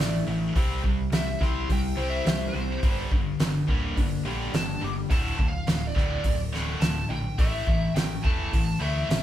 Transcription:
Already playing: clean electric guitar D4 A4, lead electric guitar D5
0.00 picked electric bass A1, distorted electric guitar A2 E3, clean electric guitar E4, snare
0.25 picked electric bass A1, distorted electric guitar A2 E3, clean electric guitar A3
0.55 picked electric bass C2, clean electric guitar C3, distorted electric guitar C3 G3 C4, kick, open hi-hat
0.83 picked electric bass C2, distorted electric guitar C3 G3, kick
1.11 picked electric bass C2, distorted electric guitar C3 G3, clean electric guitar G4, lead electric guitar E5, snare, open hi-hat
1.40 picked electric bass C2, distorted electric guitar C3 G3 C4, clean electric guitar E4, lead electric guitar C6, kick, snare
1.68 picked electric bass C2, distorted electric guitar C3 G3, clean electric guitar G4, lead electric guitar G5, kick, open hi-hat
1.97 picked electric bass C2, distorted electric guitar C3 G3 C4, clean electric guitar C5
2.10 lead electric guitar E5
2.25 picked electric bass C2, distorted electric guitar C3 G3, clean electric guitar G4, snare, open hi-hat
2.47 lead electric guitar C5
2.53 picked electric bass C2, distorted electric guitar C3 G3, clean electric guitar C4
2.82 picked electric bass G1, clean electric guitar G2, distorted electric guitar G2 D3 G3, kick, open hi-hat
3.12 picked electric bass G1, distorted electric guitar G2 D3, kick
3.40 picked electric bass G1, distorted electric guitar G2 D3, clean electric guitar D4, snare, open hi-hat
3.68 picked electric bass D1, distorted electric guitar G2 D3 G3, clean electric guitar A#3, kick
3.97 picked electric bass G1, distorted electric guitar G2 D3, clean electric guitar D4, kick, open hi-hat
4.25 picked electric bass A#1, distorted electric guitar G2 D3 G3, clean electric guitar G4
4.53 picked electric bass G1, distorted electric guitar G2 D3, clean electric guitar D4, lead electric guitar A5, snare, open hi-hat
4.81 picked electric bass G1, distorted electric guitar G2 D3, clean electric guitar G3, lead electric guitar D6
5.10 picked electric bass D1, distorted electric guitar D2 A2 D3, lead electric guitar A5, kick, open hi-hat
5.38 picked electric bass D1, distorted electric guitar D2 A2, kick
5.48 lead electric guitar F5
5.67 picked electric bass D1, distorted electric guitar D2 A2, snare, open hi-hat
5.87 lead electric guitar D5
5.95 picked electric bass D1, distorted electric guitar D2 A2 D3, kick, snare
6.24 picked electric bass D1, distorted electric guitar D2 A2, kick, open hi-hat
6.52 picked electric bass D1, distorted electric guitar D2 A2 D3, snare
6.81 picked electric bass D1, distorted electric guitar D2 A2, lead electric guitar A5, snare, open hi-hat
7.09 picked electric bass A#1, distorted electric guitar D2 A2, lead electric guitar G5
7.38 picked electric bass A1, distorted electric guitar A2 E3 A3, lead electric guitar E5, kick, open hi-hat
7.67 picked electric bass A1, distorted electric guitar A2 E3, kick
7.94 picked electric bass A1, distorted electric guitar A2 E3, lead electric guitar G5, snare, open hi-hat
8.24 picked electric bass E1, distorted electric guitar A2 E3 A3, lead electric guitar A5, kick
8.53 picked electric bass A1, distorted electric guitar A2 E3, kick, open hi-hat
8.80 picked electric bass D2, distorted electric guitar A2 E3 A3, lead electric guitar E5
9.09 picked electric bass A1, distorted electric guitar A2 E3, snare, open hi-hat

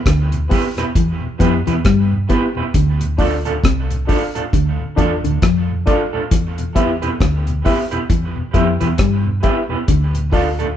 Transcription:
0.06 fingered electric bass D2, clean electric guitar D3, kick, cross-stick, closed hi-hat
0.32 tonewheel organ E2 B2, closed hi-hat
0.49 tonewheel organ E3 G3 B3, reed electric piano B3 E4 G4 B4, clean electric guitar B3 E4 G4 B4, kick, open hi-hat
0.77 tonewheel organ E2 B2, clean electric guitar B3 E4 G4 B4, cross-stick, closed hi-hat
0.95 fingered electric bass E2, clean electric guitar E3, kick, closed hi-hat
1.21 tonewheel organ E2 B2
1.39 fingered electric bass F2, tonewheel organ E3 G3 B3, clean electric guitar F3 B3 E4 G4 B4, reed electric piano B3 E4 G4 B4, kick, closed hi-hat
1.66 tonewheel organ E2 B2, fingered electric bass E2, clean electric guitar E3 B3 E4 G4 B4, closed hi-hat
1.85 fingered electric bass G2, clean electric guitar G3, kick, cross-stick, closed hi-hat
2.11 tonewheel organ E2 B2
2.29 tonewheel organ E3 G3 B3, reed electric piano B3 E4 G4 B4, clean electric guitar B3 E4 G4 B4, kick, closed hi-hat
2.55 tonewheel organ E2 B2, clean electric guitar B3 E4 G4 B4
2.74 fingered electric bass D2, clean electric guitar D3, kick, closed hi-hat
3.00 tonewheel organ D2 A2, closed hi-hat
3.18 tonewheel organ F3 A3 D4, clean electric guitar A3 D4 F4 A4, reed electric piano D4 F4 A4 D5, kick, open hi-hat
3.45 tonewheel organ D2 A2, clean electric guitar A3 D4 F4 A4, closed hi-hat
3.64 fingered electric bass C2, clean electric guitar C3, kick, cross-stick, closed hi-hat
3.90 tonewheel organ D2 A2, closed hi-hat
4.07 tonewheel organ F3 A3 D4, clean electric guitar A3 D4 F4 A4, reed electric piano D4 F4 A4 D5, kick, open hi-hat
4.35 tonewheel organ D2 A2, clean electric guitar A3 D4 F4 A4, closed hi-hat
4.53 fingered electric bass D2, clean electric guitar D3, kick, closed hi-hat
4.80 tonewheel organ D2 A2
4.97 fingered electric bass E2, clean electric guitar E3 A3 D4 F4 A4, tonewheel organ F3 A3 D4, reed electric piano D4 F4 A4 D5, kick, closed hi-hat
5.24 fingered electric bass D2, tonewheel organ D2 A2, clean electric guitar D3, closed hi-hat
5.42 fingered electric bass F2, clean electric guitar F3, kick, cross-stick, closed hi-hat
5.69 tonewheel organ D2 A2
5.86 tonewheel organ F3 A3 D4, clean electric guitar A3 D4 F4 A4, reed electric piano D4 F4 A4 D5, kick, closed hi-hat
6.13 tonewheel organ D2 A2, clean electric guitar A3 D4 F4 A4
6.31 fingered electric bass E2, clean electric guitar E3, kick, closed hi-hat
6.58 tonewheel organ E2 B2, closed hi-hat
6.75 tonewheel organ G3 B3 E4, clean electric guitar B3 E4 G4 B4, reed electric piano E4 G4 B4 E5, kick, closed hi-hat
7.02 tonewheel organ E2 B2, clean electric guitar B3 E4 G4 B4, closed hi-hat
7.20 fingered electric bass D2, clean electric guitar D3, kick, cross-stick, closed hi-hat
7.47 tonewheel organ E2 B2, closed hi-hat
7.64 tonewheel organ G3 B3 E4, clean electric guitar B3 E4 G4 B4, reed electric piano E4 G4 B4 E5, kick, open hi-hat
7.91 tonewheel organ E2 B2, clean electric guitar B3 E4 G4 B4, closed hi-hat
8.10 fingered electric bass E2, clean electric guitar E3, kick, closed hi-hat
8.36 tonewheel organ E2 B2
8.53 fingered electric bass F2, clean electric guitar F3 B3 E4 G4 B4, tonewheel organ G3 B3 E4, reed electric piano E4 G4 B4 E5, kick, closed hi-hat
8.80 tonewheel organ E2 B2, fingered electric bass E2, clean electric guitar E3 B3 E4 G4 B4, closed hi-hat
8.98 fingered electric bass G2, clean electric guitar G3, kick, cross-stick, closed hi-hat
9.24 tonewheel organ E2 B2
9.43 tonewheel organ G3 B3 E4, clean electric guitar B3 E4 G4 B4, reed electric piano E4 G4 B4 E5, kick, closed hi-hat
9.69 tonewheel organ E2 B2, clean electric guitar B3 E4 G4 B4
9.88 fingered electric bass D2, clean electric guitar D3, kick, closed hi-hat
10.14 tonewheel organ D2 A2, closed hi-hat
10.32 tonewheel organ A3 D4 F4, clean electric guitar A3 D4 F4 A4, reed electric piano F4 A4 D5 F5, kick, open hi-hat
10.59 tonewheel organ D2 A2, clean electric guitar A3 D4 F4 A4, closed hi-hat

